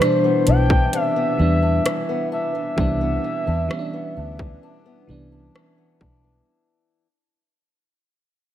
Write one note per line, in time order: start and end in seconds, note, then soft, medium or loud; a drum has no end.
0.00 1.15 B2 medium
0.00 1.38 E3 medium
0.00 0.70 E3 medium
0.00 1.39 G3 medium
0.00 0.24 B3 medium
0.00 1.40 B3 medium
0.00 0.03 D4 loud
0.00 0.47 D4 medium
0.00 1.15 D4 medium
0.00 0.50 C5 loud
0.00 cross-stick loud
0.00 closed hi-hat medium
0.24 1.16 B3 medium
0.47 0.86 B1 medium
0.47 0.93 D4 medium
0.47 0.94 G5 loud
0.47 closed hi-hat medium
0.70 1.39 E3 medium
0.70 kick medium
0.93 2.77 C3 medium
0.93 1.62 D4 medium
0.93 2.28 E5 loud
0.93 closed hi-hat medium
1.16 2.09 B3 medium
1.38 1.78 E2 medium
1.38 2.52 E3 medium
1.38 1.85 E3 medium
1.38 2.53 G3 medium
1.38 2.53 B3 medium
1.42 2.54 D4 medium
1.62 2.31 D4 medium
1.86 2.54 E3 medium
1.86 cross-stick loud
1.86 closed hi-hat medium
2.09 3.01 B3 medium
2.32 2.78 D4 medium
2.32 5.51 E5 loud
2.55 3.24 E3 medium
2.76 3.17 C2 medium
2.76 4.66 C3 medium
2.76 3.53 E3 medium
2.76 3.53 G3 medium
2.76 3.54 B3 medium
2.76 3.47 D4 medium
2.76 kick loud
2.80 3.55 D4 medium
3.01 3.93 B3 medium
3.24 3.70 E3 medium
3.47 3.67 E2 medium
3.47 4.16 D4 medium
3.69 4.83 E3 medium
3.69 4.39 E3 medium
3.69 4.83 G3 medium
3.69 4.84 B3 medium
3.69 cross-stick loud
3.73 3.78 C#4 medium
3.79 4.88 D4 medium
3.93 4.85 B3 medium
4.17 4.56 D2 medium
4.17 4.63 D4 medium
4.39 5.08 E3 medium
4.39 kick medium
4.63 5.32 D4 medium
4.86 5.77 B3 medium
5.07 5.48 C2 medium
5.07 6.21 E3 medium
5.07 5.54 E3 medium
5.07 6.22 G3 medium
5.07 6.23 B3 medium
5.07 6.23 D4 medium
5.32 6.00 D4 medium
5.55 6.24 E3 medium
5.55 cross-stick loud
5.78 7.06 B3 medium
6.01 6.40 B1 medium
6.01 7.06 D4 medium
6.01 kick medium
6.24 7.06 E3 medium